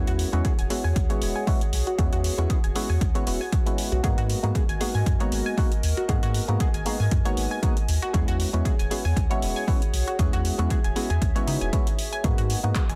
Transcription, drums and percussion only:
0.07 closed hi-hat
0.19 open hi-hat
0.33 closed hi-hat
0.45 kick, closed hi-hat
0.59 closed hi-hat
0.70 open hi-hat
0.96 kick, closed hi-hat
1.10 closed hi-hat
1.22 open hi-hat
1.47 kick, open hi-hat
1.61 closed hi-hat
1.73 open hi-hat
1.87 closed hi-hat
1.99 kick, closed hi-hat
2.13 closed hi-hat
2.24 open hi-hat
2.38 closed hi-hat
2.50 kick, closed hi-hat
2.64 closed hi-hat
2.76 open hi-hat
3.01 kick, closed hi-hat
3.15 closed hi-hat
3.27 open hi-hat
3.52 kick, closed hi-hat
3.67 closed hi-hat
3.78 open hi-hat
3.92 closed hi-hat
4.04 kick, closed hi-hat
4.18 closed hi-hat
4.30 open hi-hat
4.44 closed hi-hat
4.55 kick, closed hi-hat
4.69 closed hi-hat
4.81 open hi-hat
5.06 kick, closed hi-hat
5.20 closed hi-hat
5.32 open hi-hat
5.58 kick, open hi-hat
5.72 closed hi-hat
5.83 open hi-hat
5.97 closed hi-hat
6.09 kick, closed hi-hat
6.23 closed hi-hat
6.34 open hi-hat
6.49 closed hi-hat
6.60 kick, closed hi-hat
6.74 closed hi-hat
6.86 open hi-hat
7.11 kick, closed hi-hat
7.26 closed hi-hat
7.37 open hi-hat
7.63 kick, closed hi-hat
7.77 closed hi-hat
7.88 open hi-hat
8.02 closed hi-hat
8.14 kick, closed hi-hat
8.28 closed hi-hat
8.40 open hi-hat
8.54 closed hi-hat
8.65 kick, closed hi-hat
8.79 closed hi-hat
8.91 open hi-hat
9.17 kick, closed hi-hat
9.31 closed hi-hat
9.42 open hi-hat
9.68 kick, open hi-hat
9.82 closed hi-hat
9.94 open hi-hat
10.08 closed hi-hat
10.19 kick, closed hi-hat
10.33 closed hi-hat
10.45 open hi-hat
10.59 closed hi-hat
10.70 kick, closed hi-hat
10.84 closed hi-hat
10.96 open hi-hat
11.10 closed hi-hat
11.22 kick, closed hi-hat
11.36 closed hi-hat
11.47 open hi-hat
11.62 closed hi-hat
11.73 kick, closed hi-hat
11.87 closed hi-hat
11.99 open hi-hat
12.13 closed hi-hat
12.24 kick, closed hi-hat
12.38 closed hi-hat
12.50 open hi-hat
12.64 closed hi-hat
12.75 kick, clap, closed hi-hat
12.90 closed hi-hat

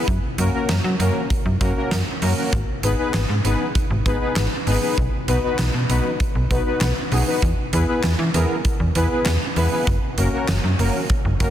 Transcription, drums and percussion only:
0.08 kick, closed hi-hat
0.38 closed hi-hat
0.69 snare, closed hi-hat
1.00 closed hi-hat
1.30 kick, closed hi-hat
1.61 kick, closed hi-hat
1.91 snare, closed hi-hat
2.22 open hi-hat
2.53 kick, closed hi-hat
2.83 closed hi-hat
3.14 snare, clap, closed hi-hat
3.45 closed hi-hat
3.75 kick, closed hi-hat
4.06 kick, closed hi-hat
4.36 snare, clap, closed hi-hat
4.67 open hi-hat
4.98 kick, closed hi-hat
5.28 closed hi-hat
5.59 snare, clap, closed hi-hat
5.90 closed hi-hat
6.20 kick, closed hi-hat
6.51 kick, closed hi-hat
6.81 snare, clap, closed hi-hat
7.12 open hi-hat
7.42 kick, closed hi-hat
7.73 closed hi-hat
8.03 snare, clap, closed hi-hat
8.34 closed hi-hat
8.65 kick, closed hi-hat
8.95 closed hi-hat
9.26 snare, clap, closed hi-hat
9.56 open hi-hat
9.87 kick, closed hi-hat
10.18 closed hi-hat
10.48 snare, clap, closed hi-hat
10.79 open hi-hat
11.10 kick, closed hi-hat
11.40 kick, closed hi-hat

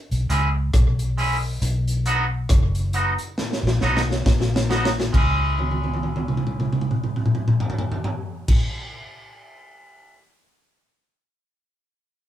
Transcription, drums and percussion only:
0.11 closed hi-hat
0.30 closed hi-hat
0.74 kick, cross-stick, closed hi-hat
0.99 closed hi-hat
1.18 open hi-hat
1.62 closed hi-hat
1.88 closed hi-hat
2.06 closed hi-hat
2.49 kick, cross-stick, closed hi-hat
2.75 closed hi-hat
2.93 closed hi-hat
3.18 closed hi-hat
3.38 snare
3.53 snare
3.67 snare
3.81 snare
3.97 snare
4.11 snare
4.26 kick, snare
4.41 snare
4.56 snare
4.71 snare
4.85 snare
5.00 snare
5.14 kick, crash
5.59 high tom
5.71 high tom
5.84 high tom
5.94 high tom
6.03 high tom
6.16 high tom
6.28 mid tom
6.37 mid tom
6.47 mid tom
6.60 mid tom
6.73 mid tom
6.81 mid tom
6.91 mid tom
7.04 mid tom
7.16 mid tom
7.26 mid tom
7.35 mid tom
7.48 mid tom
7.60 floor tom
7.70 floor tom
7.79 floor tom
7.92 floor tom
8.04 floor tom
8.48 kick, crash

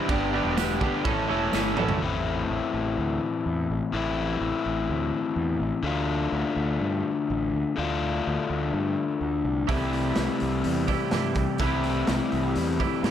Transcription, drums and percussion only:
0.09 kick, crash
0.57 snare, tambourine, crash
0.81 kick
1.05 kick, crash
1.53 snare, tambourine
1.77 mid tom
1.89 floor tom
9.69 kick, open hi-hat
9.93 open hi-hat
10.15 snare, open hi-hat
10.40 open hi-hat
10.64 open hi-hat
10.88 kick, open hi-hat
11.11 snare, open hi-hat
11.35 kick, open hi-hat
11.58 kick, open hi-hat
11.83 open hi-hat
12.07 snare, open hi-hat
12.32 open hi-hat
12.55 open hi-hat
12.80 kick, open hi-hat
13.04 snare, open hi-hat

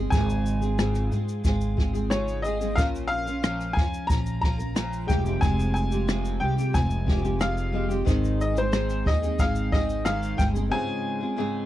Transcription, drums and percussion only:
0.12 kick, shaker
0.30 shaker
0.46 shaker
0.62 shaker
0.79 cross-stick, shaker
0.95 cross-stick, shaker
1.12 shaker
1.29 shaker
1.44 kick, shaker
1.61 shaker
1.78 kick
1.95 shaker
2.11 cross-stick, shaker
2.28 shaker
2.45 shaker
2.61 shaker
2.78 kick, shaker
2.95 shaker
3.27 shaker
3.44 cross-stick, shaker
3.60 cross-stick, shaker
3.77 kick
3.94 shaker
4.10 kick, shaker
4.26 shaker
4.43 kick
4.60 shaker
4.76 cross-stick, shaker
4.93 shaker
5.09 kick, shaker
5.26 shaker
5.42 kick, shaker
5.59 shaker
5.76 shaker
5.92 shaker
6.08 cross-stick, shaker
6.25 shaker
6.58 shaker
6.74 kick, shaker
6.90 shaker
7.08 kick
7.25 shaker
7.41 cross-stick, shaker
7.57 shaker
7.91 shaker
8.07 kick, shaker
8.24 shaker
8.41 shaker
8.57 shaker
8.73 cross-stick, shaker
8.90 cross-stick, shaker
9.06 kick
9.23 shaker
9.39 kick, shaker
9.55 shaker
9.73 kick
9.89 shaker
10.06 cross-stick, shaker
10.23 shaker
10.39 kick, shaker
10.56 shaker

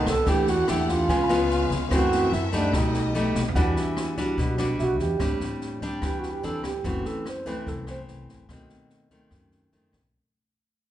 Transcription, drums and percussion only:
0.06 kick, cross-stick, snare
0.26 kick, snare
0.47 snare
0.68 cross-stick, snare
0.88 kick, snare
1.09 kick, snare
1.29 cross-stick, snare
1.50 snare
1.71 kick, snare
1.91 kick, cross-stick, snare
2.12 snare
2.32 snare
2.53 kick, snare
2.73 kick, cross-stick, snare
2.94 snare
3.14 snare
3.35 snare
3.48 floor tom
3.55 kick, snare
3.76 snare
3.97 cross-stick, snare
4.17 kick, snare
4.38 kick, snare
4.58 cross-stick, snare
4.79 snare
4.99 kick, snare
5.20 kick, cross-stick, snare
5.40 snare
5.61 snare
5.81 kick, snare
6.02 kick, cross-stick, snare
6.23 snare
6.43 snare
6.64 kick, cross-stick, snare
6.84 kick, snare
7.05 snare
7.25 cross-stick, snare
7.46 kick, snare
7.67 kick, snare
7.87 cross-stick, snare
8.08 snare
8.28 kick, snare
8.49 kick, cross-stick, snare
8.69 snare
8.90 snare
9.10 kick, snare
9.31 kick, cross-stick, snare
9.51 snare
9.72 snare
9.93 kick, cross-stick, snare

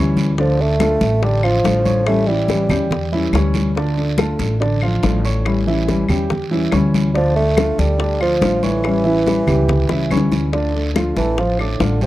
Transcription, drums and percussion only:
0.17 high bongo, high conga, short guiro
0.38 high bongo, long guiro
0.59 high conga
0.80 high bongo, high conga, short guiro, claves
1.01 high conga, short guiro
1.22 high bongo, high conga, long guiro
1.43 high conga, claves
1.64 high bongo, low bongo, high conga, short guiro
1.85 high conga, short guiro
2.06 high bongo, long guiro, claves
2.27 high bongo, high conga
2.48 high bongo, high conga, short guiro
2.69 high bongo, high conga, low conga, short guiro, claves
2.91 high bongo, high conga, low conga, long guiro
3.12 high conga
3.33 high bongo, low bongo, high conga, short guiro, claves
3.54 high bongo, high conga, short guiro
3.75 high bongo, high conga, long guiro
3.97 high conga
4.18 high bongo, high conga, short guiro, claves
4.39 high conga, short guiro
4.60 high bongo, high conga, long guiro
4.82 high conga, claves
5.03 high bongo, low bongo, high conga, short guiro
5.25 short guiro
5.45 high bongo, high conga, long guiro, claves
5.68 high bongo, high conga
5.88 high bongo, high conga, short guiro
6.09 high bongo, high conga, low conga, short guiro, claves
6.30 high bongo, high conga, low conga, long guiro
6.52 high conga
6.72 high bongo, low bongo, high conga, short guiro, claves
6.94 high bongo, high conga, short guiro
7.15 high bongo, high conga, long guiro
7.37 high conga
7.57 high bongo, high conga, short guiro, claves
7.79 high conga, short guiro
8.00 high bongo, high conga, long guiro
8.21 high conga, claves
8.42 high bongo, low bongo, high conga, short guiro
8.63 high conga, short guiro
8.83 high bongo, high conga, long guiro, claves
9.05 high bongo, high conga
9.26 high bongo, high conga, short guiro
9.48 high bongo, high conga, low conga, short guiro, claves
9.69 high bongo, high conga, low conga, long guiro
9.89 high bongo, high conga
10.11 high conga, short guiro, claves
10.17 low bongo
10.32 low bongo, high conga, short guiro
10.53 high bongo, high conga, long guiro
10.76 high conga
10.96 high bongo, high conga, short guiro, claves
11.17 high conga, short guiro
11.38 high bongo, high conga, long guiro
11.59 high conga, claves
11.80 high bongo, low bongo, high conga, short guiro
12.01 high conga, short guiro

